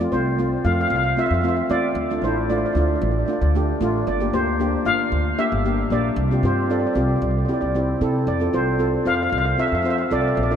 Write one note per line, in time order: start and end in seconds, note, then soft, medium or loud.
0.00 0.07 C4 medium
0.00 0.08 F4 medium
0.00 0.13 D5 medium
0.12 0.53 C2 medium
0.12 0.29 A3 medium
0.12 0.29 C4 medium
0.12 0.29 F4 medium
0.12 0.66 C5 medium
0.39 0.55 A3 medium
0.39 0.55 C4 medium
0.39 0.55 F4 medium
0.65 0.85 F2 medium
0.65 0.97 A3 medium
0.65 0.97 C4 medium
0.65 0.97 F4 medium
0.65 0.71 F5 medium
0.73 0.79 F5 medium
0.81 0.86 F5 medium
0.88 1.11 C2 medium
0.88 0.95 F5 medium
0.96 1.03 F5 medium
1.04 1.10 F5 medium
1.17 1.33 A3 medium
1.17 1.34 C4 medium
1.17 1.34 F4 medium
1.17 1.25 E5 medium
1.26 1.33 E5 medium
1.30 1.61 F2 medium
1.30 1.40 E5 medium
1.41 1.60 A3 medium
1.41 1.60 C4 medium
1.41 1.61 F4 medium
1.41 1.47 E5 medium
1.48 1.55 E5 medium
1.56 1.63 E5 medium
1.69 1.90 E2 medium
1.69 1.94 A3 medium
1.69 1.94 C4 medium
1.69 1.95 F4 medium
1.69 2.25 D5 medium
1.95 2.16 D2 medium
2.10 2.18 A3 medium
2.10 2.18 D4 medium
2.10 2.18 F4 medium
2.22 2.63 A1 medium
2.22 2.39 A3 medium
2.22 2.40 D4 medium
2.22 2.40 E4 medium
2.22 2.51 C5 medium
2.50 2.66 A3 medium
2.50 2.66 D4 medium
2.50 2.66 F4 medium
2.50 2.57 D5 medium
2.58 2.65 D5 medium
2.66 2.72 D5 medium
2.73 2.96 D2 medium
2.73 3.08 A3 medium
2.73 3.08 D4 medium
2.73 3.08 F4 medium
2.73 2.79 D5 soft
2.81 2.87 D5 soft
2.88 2.95 D5 soft
2.96 3.02 D5 soft
3.02 3.22 A1 medium
3.02 3.10 D5 soft
3.11 3.17 D5 soft
3.19 3.25 D5 soft
3.26 3.44 A3 medium
3.26 3.44 D4 medium
3.26 3.45 F4 medium
3.26 3.32 D5 soft
3.33 3.40 D5 soft
3.41 3.72 D2 medium
3.41 3.47 D5 medium
3.55 3.71 A3 medium
3.55 3.71 D4 medium
3.55 3.72 G4 medium
3.81 4.01 A1 medium
3.81 4.05 A3 medium
3.81 4.05 D4 medium
3.81 4.05 F4 medium
4.07 4.27 G1 medium
4.07 4.34 D5 medium
4.20 4.28 A#3 medium
4.20 4.28 D4 medium
4.20 4.29 G4 medium
4.33 4.74 D2 medium
4.33 4.50 A#3 medium
4.33 4.50 D4 medium
4.33 4.50 G4 medium
4.33 4.88 C5 medium
4.60 4.76 A#3 medium
4.60 4.76 D4 medium
4.60 4.76 G4 medium
4.85 5.06 G1 medium
4.85 5.18 A#3 medium
4.85 5.18 D4 medium
4.85 5.18 F4 medium
4.85 5.40 F5 medium
5.12 5.32 D2 medium
5.38 5.54 A#3 medium
5.38 5.55 D4 medium
5.38 5.55 G4 medium
5.38 5.93 E5 medium
5.52 5.82 G1 medium
5.65 5.81 A#3 medium
5.65 5.81 D4 medium
5.65 5.81 G4 medium
5.90 6.11 A#1 medium
5.90 6.15 A#3 medium
5.90 6.15 D4 medium
5.90 6.16 G4 medium
5.90 6.46 D5 medium
6.16 6.37 C2 medium
6.31 6.39 C4 medium
6.31 6.39 F4 soft
6.31 6.39 G4 medium
6.43 6.84 G2 medium
6.43 6.60 C4 medium
6.43 6.60 F4 medium
6.43 6.61 G4 medium
6.43 6.71 C5 medium
6.70 6.86 C4 medium
6.70 6.86 F4 medium
6.70 6.87 A4 medium
6.70 6.78 D5 medium
6.79 6.85 D5 soft
6.86 6.92 D5 medium
6.93 7.16 C2 medium
6.93 7.22 C4 medium
6.93 7.23 F4 medium
6.93 7.23 G4 medium
6.93 6.99 D5 soft
7.01 7.07 D5 soft
7.08 7.15 D5 soft
7.16 7.22 D5 soft
7.22 7.42 C2 medium
7.22 7.29 D5 soft
7.30 7.37 D5 soft
7.38 7.44 D5 soft
7.45 7.65 C4 medium
7.45 7.65 E4 soft
7.45 7.65 G4 medium
7.45 7.52 D5 soft
7.54 7.60 D5 medium
7.61 7.92 C2 medium
7.61 7.67 D5 medium
7.75 7.91 C4 medium
7.75 7.91 E4 medium
7.75 7.91 G4 medium
8.01 8.21 C3 medium
8.01 8.25 C4 medium
8.01 8.25 E4 medium
8.01 8.25 A4 medium
8.27 8.47 F2 medium
8.27 8.55 D5 medium
8.40 8.48 C4 medium
8.40 8.48 F4 soft
8.40 8.49 A4 medium
8.53 8.94 C2 medium
8.53 8.69 C4 medium
8.53 8.70 F4 medium
8.53 8.70 A4 medium
8.53 9.08 C5 medium
8.79 8.95 C4 medium
8.79 8.96 F4 medium
8.79 8.96 A4 medium
9.05 9.26 F2 medium
9.05 9.37 C4 medium
9.05 9.38 F4 medium
9.05 9.38 C5 medium
9.05 9.13 F5 medium
9.15 9.21 F5 medium
9.23 9.29 F5 medium
9.30 9.53 C2 medium
9.30 9.37 F5 medium
9.38 9.44 F5 medium
9.46 9.52 F5 medium
9.58 9.74 C4 medium
9.58 9.75 F4 soft
9.58 9.75 A4 medium
9.58 9.66 E5 loud
9.67 9.74 E5 medium
9.72 10.02 F2 medium
9.72 9.81 E5 medium
9.82 10.01 C4 medium
9.82 10.01 F4 medium
9.82 10.01 C5 medium
9.82 9.89 E5 medium
9.90 9.97 E5 medium
9.98 10.04 E5 medium
10.10 10.31 C2 medium
10.10 10.34 C4 medium
10.10 10.35 F4 medium
10.10 10.35 A4 medium
10.10 10.19 D5 medium
10.21 10.27 D5 medium
10.28 10.34 D5 medium
10.35 10.56 A#1 medium
10.35 10.41 D5 medium
10.43 10.49 D5 medium
10.51 10.56 D4 medium
10.51 10.56 F4 medium
10.51 10.56 A#4 medium
10.51 10.56 D5 medium